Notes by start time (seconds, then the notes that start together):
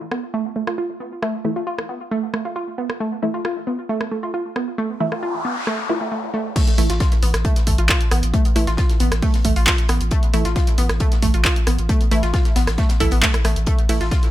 0.11 B3, cross-stick
0.34 A3
0.56 A3
0.67 F4, cross-stick
0.78 F4
1.00 B3
1.22 A3, cross-stick
1.45 E3 A3 E4
1.56 F4
1.67 F4
1.78 cross-stick
1.89 B3
2.11 A3
2.34 A3, cross-stick
2.45 F4
2.56 F4
2.78 B3
2.90 cross-stick
3.00 A3
3.22 E3 A3 E4
3.34 F4
3.45 F4, cross-stick
3.67 B3
3.89 A3
4.01 cross-stick
4.12 A3
4.23 F4
4.34 F4
4.56 B3, cross-stick
4.78 A3, noise sweep
5.00 E3 A3 E4
5.12 F4, cross-stick
5.23 F4
5.45 B3
5.67 A3, cross-stick
5.89 E3 A3 E4 F4
6.01 A3
6.12 A3
6.34 A3
6.56 A3, kick, closed hi-hat, crash
6.67 closed hi-hat
6.78 A1 E3 A3 E4, closed hi-hat, open hi-hat
6.90 A1 F4, snare, closed hi-hat
7.00 F4, kick, snare, closed hi-hat
7.12 snare, closed hi-hat
7.23 A1 B3, closed hi-hat, open hi-hat
7.34 A1, cross-stick, snare, closed hi-hat
7.45 A3, kick, closed hi-hat
7.56 snare, closed hi-hat
7.67 A1 A3, kick, closed hi-hat, open hi-hat
7.78 A1 F4, closed hi-hat
7.89 F4, kick, snare, clap, closed hi-hat
8.01 closed hi-hat
8.11 A1 B3, cross-stick, closed hi-hat, open hi-hat
8.23 A1, closed hi-hat
8.34 A3, kick, closed hi-hat
8.45 closed hi-hat
8.56 A1 E3 A3 E4, closed hi-hat, open hi-hat
8.67 A1 F4, snare, closed hi-hat
8.77 F4, kick, snare, closed hi-hat
8.89 snare, closed hi-hat
9.00 A1 B3, closed hi-hat, open hi-hat
9.12 A1, cross-stick, snare, closed hi-hat
9.22 A3, kick, closed hi-hat, open hi-hat
9.34 snare, closed hi-hat
9.45 A1 A3, kick, closed hi-hat, open hi-hat
9.56 A1 F4, closed hi-hat, open hi-hat
9.67 F4, kick, snare, clap, closed hi-hat
9.78 closed hi-hat
9.88 A1 B3, cross-stick, snare, closed hi-hat, open hi-hat
10.01 A1, closed hi-hat
10.11 A3, kick, closed hi-hat
10.23 closed hi-hat
10.34 A1 E3 A3 E4, closed hi-hat, open hi-hat
10.45 A1 F4, snare, closed hi-hat
10.56 F4, kick, snare, closed hi-hat
10.67 snare, closed hi-hat
10.78 A1 B3, closed hi-hat, open hi-hat
10.89 A1, cross-stick, snare, closed hi-hat
11.00 A3, kick, closed hi-hat
11.12 snare, closed hi-hat
11.22 A1 A3, kick, closed hi-hat, open hi-hat
11.34 A1 F4, closed hi-hat
11.45 F4, kick, snare, clap, closed hi-hat
11.56 closed hi-hat
11.67 A1 B3, cross-stick, closed hi-hat, open hi-hat
11.78 A1, closed hi-hat
11.89 A3, kick, closed hi-hat
12.01 closed hi-hat
12.11 A1 E3 A3 E4, closed hi-hat, open hi-hat
12.23 A1 F4, snare, closed hi-hat
12.34 F4, kick, snare, closed hi-hat
12.45 snare, closed hi-hat
12.56 A1 B3, snare, closed hi-hat, open hi-hat
12.67 A1, cross-stick, snare, closed hi-hat
12.78 A3, kick, snare, closed hi-hat
12.89 snare, closed hi-hat
13.00 A1 E3 A3 E4 A4, kick, closed hi-hat, open hi-hat
13.11 A1 B3, closed hi-hat, open hi-hat
13.22 A3, kick, snare, clap, closed hi-hat
13.34 cross-stick, closed hi-hat
13.44 A1 A3, cross-stick, snare, closed hi-hat, open hi-hat
13.56 A1, closed hi-hat
13.66 A3, kick, closed hi-hat
13.79 closed hi-hat
13.89 A1 E3 A3 E4, closed hi-hat, open hi-hat, ride
14.01 A1 F4, snare, closed hi-hat
14.11 F4, kick, snare, closed hi-hat
14.23 snare, closed hi-hat